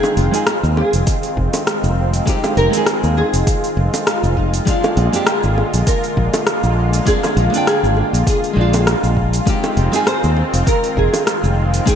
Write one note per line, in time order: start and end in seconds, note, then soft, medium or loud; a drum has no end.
0.00 4.63 D#3 medium
0.00 0.29 G#3 medium
0.00 9.43 G#3 medium
0.00 0.29 C4 medium
0.00 4.63 C4 medium
0.00 0.30 D#4 medium
0.00 11.95 F4 medium
0.00 0.17 G#4 loud
0.00 0.30 G5 medium
0.00 high bongo medium
0.04 cabasa soft
0.17 0.27 F1 medium
0.17 0.46 F4 medium
0.17 open hi-hat soft
0.31 0.44 G#3 medium
0.31 0.44 C4 medium
0.31 0.45 D#4 medium
0.31 0.46 G#4 medium
0.31 open hi-hat soft
0.31 cabasa medium
0.47 0.55 F4 medium
0.47 cross-stick loud
0.47 open hi-hat medium
0.47 cabasa medium
0.63 0.81 D#2 medium
0.63 cabasa soft
0.77 1.53 G#4 medium
0.77 high bongo medium
0.93 1.02 F1 medium
0.93 open hi-hat soft
0.93 cabasa medium
1.07 kick loud
1.07 open hi-hat medium
1.07 cabasa medium
1.23 open hi-hat soft
1.23 cabasa soft
1.37 1.47 F1 medium
1.37 kick medium
1.53 1.93 G4 medium
1.53 open hi-hat soft
1.53 high bongo medium
1.53 cabasa medium
1.67 cross-stick medium
1.67 open hi-hat medium
1.67 cabasa soft
1.84 2.19 F1 medium
1.84 cabasa soft
2.14 open hi-hat soft
2.14 cabasa medium
2.25 2.69 G#3 medium
2.25 2.69 C4 medium
2.25 2.70 D#4 medium
2.25 2.71 G4 medium
2.25 kick loud
2.25 open hi-hat medium
2.25 cabasa medium
2.44 cross-stick soft
2.44 high bongo medium
2.44 cabasa soft
2.57 2.67 F1 medium
2.57 3.17 A#4 loud
2.57 open hi-hat soft
2.70 4.62 G#3 medium
2.70 4.63 C4 medium
2.70 open hi-hat soft
2.70 cabasa medium
2.75 4.64 D#4 medium
2.75 4.66 G#4 medium
2.86 cross-stick medium
2.86 open hi-hat medium
2.86 cabasa medium
3.04 3.21 D#2 medium
3.04 cabasa soft
3.17 4.10 G#4 loud
3.17 high bongo medium
3.34 3.42 F1 medium
3.34 open hi-hat soft
3.34 cabasa medium
3.47 kick loud
3.47 open hi-hat medium
3.47 cabasa medium
3.64 open hi-hat soft
3.64 cabasa soft
3.77 3.87 F1 medium
3.94 open hi-hat soft
3.94 high bongo medium
3.94 cabasa medium
4.07 4.36 F4 medium
4.07 cross-stick loud
4.07 open hi-hat medium
4.07 cabasa medium
4.23 4.59 F1 medium
4.23 cabasa soft
4.37 4.67 D#4 medium
4.37 kick medium
4.54 open hi-hat soft
4.54 cabasa medium
4.65 9.43 D3 medium
4.65 5.09 G#3 medium
4.65 9.43 A#3 medium
4.65 5.09 C4 medium
4.65 5.10 D4 medium
4.65 5.29 F4 medium
4.65 5.10 F4 medium
4.65 kick loud
4.65 open hi-hat soft
4.65 cabasa medium
4.84 high bongo medium
4.84 cabasa soft
4.97 5.08 A#1 loud
4.97 open hi-hat soft
5.12 5.24 G#3 medium
5.12 5.25 C4 medium
5.12 5.25 D4 medium
5.12 5.26 G4 medium
5.12 open hi-hat soft
5.12 cabasa medium
5.27 5.87 G#4 medium
5.27 cross-stick loud
5.27 open hi-hat medium
5.27 cabasa medium
5.43 5.61 G#1 medium
5.43 cabasa soft
5.58 high bongo medium
5.74 5.82 A#1 medium
5.74 open hi-hat soft
5.74 cabasa medium
5.87 6.73 A#4 medium
5.87 kick loud
5.87 open hi-hat medium
5.87 cabasa medium
6.04 open hi-hat soft
6.04 cabasa soft
6.17 6.27 A#1 medium
6.17 kick medium
6.33 open hi-hat soft
6.33 high bongo medium
6.33 cabasa medium
6.47 cross-stick medium
6.47 open hi-hat soft
6.47 cabasa soft
6.63 6.99 A#1 medium
6.63 cabasa soft
6.93 open hi-hat soft
6.93 cabasa medium
7.05 7.49 G#3 medium
7.05 7.49 C4 medium
7.05 7.50 D4 medium
7.05 7.51 F4 medium
7.05 7.35 G#4 loud
7.05 kick loud
7.05 open hi-hat soft
7.05 cabasa medium
7.23 cross-stick soft
7.23 high bongo medium
7.23 cabasa soft
7.37 7.47 A#1 medium
7.37 7.68 F4 medium
7.37 open hi-hat soft
7.50 8.52 G#3 medium
7.50 8.54 C4 medium
7.54 8.53 D4 medium
7.54 8.56 G5 medium
7.54 open hi-hat soft
7.54 cabasa medium
7.67 8.23 G#4 loud
7.67 cross-stick medium
7.67 open hi-hat soft
7.67 cabasa medium
7.83 8.01 G#1 medium
7.83 cabasa soft
7.97 high bongo medium
8.13 8.22 A#1 medium
8.13 open hi-hat soft
8.13 cabasa medium
8.27 8.84 G#4 medium
8.27 kick loud
8.27 open hi-hat medium
8.27 cabasa medium
8.44 open hi-hat soft
8.44 cabasa soft
8.53 8.94 A#1 medium
8.53 9.42 G#3 medium
8.53 9.43 C4 medium
8.58 9.44 D4 medium
8.58 9.46 F4 medium
8.73 open hi-hat soft
8.73 high bongo medium
8.73 cabasa medium
8.87 cross-stick medium
8.87 open hi-hat soft
8.87 cabasa soft
9.04 9.39 A#1 medium
9.04 cabasa soft
9.17 kick medium
9.33 open hi-hat soft
9.33 cabasa medium
9.45 11.95 D#3 medium
9.45 9.89 G#3 medium
9.45 11.95 G#3 medium
9.45 9.89 C4 medium
9.45 11.85 C4 medium
9.45 9.90 D#4 medium
9.45 9.91 G4 medium
9.45 kick loud
9.45 open hi-hat soft
9.45 cabasa soft
9.64 high bongo medium
9.64 cabasa soft
9.77 9.87 F1 medium
9.77 open hi-hat soft
9.92 10.04 G#3 medium
9.92 10.05 C4 medium
9.92 10.05 D#4 medium
9.92 10.06 G#4 medium
9.92 open hi-hat soft
9.92 cabasa medium
10.07 10.67 C5 medium
10.07 cross-stick medium
10.07 open hi-hat medium
10.07 cabasa medium
10.23 10.41 D#2 medium
10.23 cabasa soft
10.37 high bongo soft
10.54 10.62 F1 medium
10.54 open hi-hat soft
10.54 cabasa medium
10.67 10.97 A#4 medium
10.67 kick loud
10.67 open hi-hat soft
10.67 cabasa medium
10.84 open hi-hat soft
10.84 cabasa soft
10.97 11.07 F1 medium
10.97 11.53 G#4 medium
10.97 kick medium
11.14 open hi-hat soft
11.14 high bongo medium
11.14 cabasa medium
11.27 cross-stick medium
11.27 open hi-hat soft
11.27 cabasa medium
11.44 11.79 F1 medium
11.44 cabasa soft
11.74 open hi-hat soft
11.74 cabasa medium
11.85 11.95 G#3 medium
11.85 11.95 A#3 medium
11.85 11.95 C4 medium
11.85 11.95 D#4 medium
11.85 11.95 G#4 medium
11.85 11.95 G5 medium
11.85 kick loud
11.85 open hi-hat medium
11.85 cabasa medium